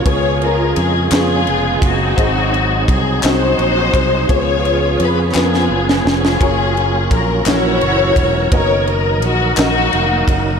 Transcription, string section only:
\new Staff \with { instrumentName = "String section" } { \time 6/8 \key cis \mixolydian \tempo 4. = 57 << { cis''8 ais'8 gis'8 gis'4 fis'8~ | fis'4 gis'8 bis'4. | cis''4 b'8 gis'4 gis'8~ | gis'4 ais'8 cis''4. |
cis''8 ais'8 fis'8 fis'4 r8 | } \\ { <eis' gis'>4. <b eis'>4 <bis dis'>8~ | <bis dis'>4 r8 <dis' fis'>4. | <eis' gis'>4. <b eis'>4 <cis' eis'>8~ | <cis' eis'>4 r8 <e' fis'>4. |
ais'4. <ais dis'>4. | } >> }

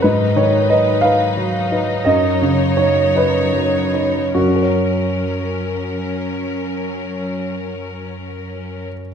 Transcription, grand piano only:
\new Staff \with { instrumentName = "Grand piano" } { \time 6/8 \key fis \major \tempo 4. = 50 << { b'8 cis''8 dis''8 eis''4. | dis''4 cis''8 b'4. | <fis, fis cis' fis' ais' cis''>2.~ | <fis, fis cis' fis' ais' cis''>2. | } \\ { gis,8 dis8 <dis' b'>8 <dis' b'>8 fis8 <dis' b'>8 | fis,8 cis8 dis'8 <dis' cis''>8 fis8 <dis' cis''>8 | r2. | r2. | } >> }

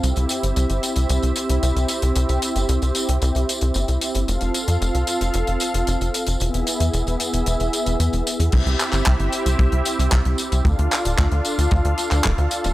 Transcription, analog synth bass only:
\new Staff \with { instrumentName = "Analog synth bass" } { \clef bass \time 4/4 \key c \major \tempo 4 = 113 c,16 c,16 r16 g,,16 c,16 g,,16 r16 c,16 c,16 c,16 r16 c,16 c,16 c,16 r16 c,16 | c,16 c,16 r16 g,,16 c,16 c,16 r16 c,16 c,16 c,16 r16 c,16 g,,16 c,16 r16 g,,16 | f,,16 f,,16 r16 f,16 f,,16 c,16 r16 f,,16 f,,16 f,,16 r16 f,,16 f,,16 f,,16 r16 f,,16 | e,,16 e,,16 r16 e,16 e,,16 e,,16 r16 e,,16 e,,16 e,,16 r16 e,,16 e,16 e,,16 r16 e,16 |
c,16 c,16 r16 g,,16 c,16 g,,16 r16 c,16 c,16 c,16 r16 c,16 c,16 c,16 r16 c,16 | d,16 d,16 r16 d,,16 d,16 d,16 r16 d,16 d,16 d,16 r16 d,16 d,,16 d,16 r16 d,,16 | }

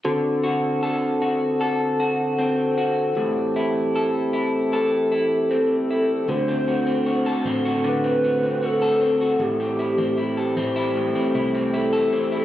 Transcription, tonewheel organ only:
<<
  \new Staff \with { instrumentName = "Tonewheel organ" } { \time 4/4 \key d \mixolydian \tempo 4 = 77 << { a'1~ | a'1 | fis'1 | g'1 | } \\ { fis'1 | g'1 | c'1~ | c'1 | } >> }
  \new Staff \with { instrumentName = "Tonewheel organ" } { \clef bass \time 4/4 \key d \mixolydian << { c'1~ | c'1 | a1~ | a1 | } \\ { d1 | e1 | d1 | e1 | } >> }
>>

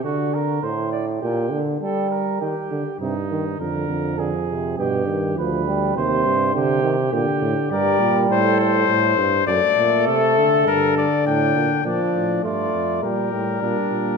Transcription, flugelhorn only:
\new Staff \with { instrumentName = "Flugelhorn" } { \time 4/4 \key g \phrygian \tempo 4 = 102 fis'8 bes'8 c''8 d''8 g'8 r8 a'8 bes'8 | g'4 ees'4 bes'4 aes'4 | g'4 b'4 c''4 g'4 | g'4 bes'4 a'4. r8 |
a'2. d'4 | d'4 f'4 g'4 d'4 | }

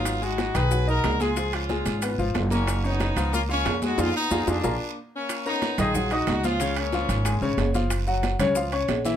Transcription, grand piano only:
\new Staff \with { instrumentName = "Grand piano" } { \time 4/4 \key ees \minor \tempo 4 = 183 <ges ees'>8 <aes aes'>4 <ees ees'>8 <ges ges'>8 <ees' ees''>4 <aes aes'>8 | <f f'>4 <aes aes'>4 <ces' ces''>8 <f f'>4 <bes bes'>8~ | <bes bes'>8 <des' des''>4 <f f'>8 <bes bes'>8 <f' f''>4 <aes aes'>8 | <ees' f' aes'>8 r8 <ees' f' aes'>8 <ees' f' aes'>8 <f' aes' bes'>8 r4. |
r8 <des' bes' bes''>4 <ees ees' ees''>8 <ges ges' ges''>8 <ees' ees'' ees'''>4 <f f' f''>8 | <des des' des''>4 <f f' f''>4 <aes aes' aes''>8 <des des' des''>4 <f f' f''>8~ | <f f' f''>8 <ges ges' ges''>4 <des des' des''>8 <f f' f''>8 <des' des'' des'''>4 <fes fes' fes''>8 | }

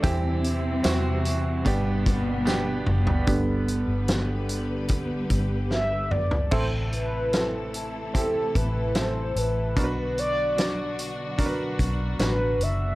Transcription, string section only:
\new Staff \with { instrumentName = "String section" } { \clef bass \time 4/4 \key g \major \tempo 4 = 74 << { <c e e'>2 <b, d d'>2 | <d g g' b'>1 | <c e e' a'>1 | <b, d d' fis'>1 | } \\ { g1 | b1 | a1 | fis1 | } >> }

